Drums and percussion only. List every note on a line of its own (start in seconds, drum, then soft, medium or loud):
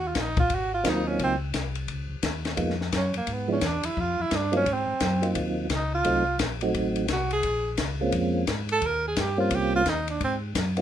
0.15 kick soft
0.15 snare medium
0.15 hi-hat pedal soft
0.15 ride medium
0.37 kick medium
0.37 ride soft
0.50 kick soft
0.50 ride medium
0.85 kick soft
0.85 snare medium
0.85 hi-hat pedal medium
0.85 ride medium
1.19 kick soft
1.19 ride medium
1.54 kick soft
1.54 snare medium
1.54 hi-hat pedal medium
1.54 ride medium
1.75 ride soft
1.88 kick soft
1.88 ride medium
2.23 kick soft
2.23 snare medium
2.23 hi-hat pedal medium
2.23 ride medium
2.45 snare medium
2.45 ride soft
2.57 kick soft
2.57 ride medium
2.70 snare soft
2.81 snare soft
2.92 kick soft
2.92 snare medium
2.92 hi-hat pedal medium
2.92 ride medium
3.14 ride medium
3.27 kick soft
3.27 ride medium
3.61 kick soft
3.61 snare medium
3.61 hi-hat pedal medium
3.61 ride medium
3.83 ride medium
3.97 kick soft
4.31 kick soft
4.31 snare medium
4.31 hi-hat pedal soft
4.31 ride medium
4.53 ride soft
4.66 kick soft
4.66 ride medium
5.00 kick soft
5.00 snare medium
5.00 hi-hat pedal medium
5.00 ride medium
5.23 ride medium
5.35 kick soft
5.35 ride medium
5.70 kick soft
5.70 snare medium
5.70 hi-hat pedal medium
5.70 ride medium
6.04 kick soft
6.04 ride medium
6.39 kick soft
6.39 snare medium
6.39 hi-hat pedal medium
6.39 ride medium
6.61 ride medium
6.74 kick soft
6.74 ride medium
6.96 ride soft
7.08 kick soft
7.08 snare medium
7.08 hi-hat pedal medium
7.08 ride medium
7.31 ride soft
7.43 kick soft
7.43 ride medium
7.77 kick soft
7.77 snare medium
7.77 hi-hat pedal medium
7.77 ride medium
8.12 kick soft
8.12 ride medium
8.47 kick soft
8.47 snare medium
8.47 hi-hat pedal medium
8.47 ride medium
8.69 ride soft
8.82 kick soft
8.82 ride medium
9.16 kick soft
9.16 snare medium
9.16 hi-hat pedal medium
9.16 ride medium
9.51 kick soft
9.51 ride medium
9.86 kick soft
9.86 snare medium
9.86 hi-hat pedal medium
9.86 ride medium
10.08 ride soft
10.21 kick soft
10.21 ride medium
10.55 kick soft
10.55 snare medium
10.55 hi-hat pedal medium
10.55 ride medium
10.77 ride soft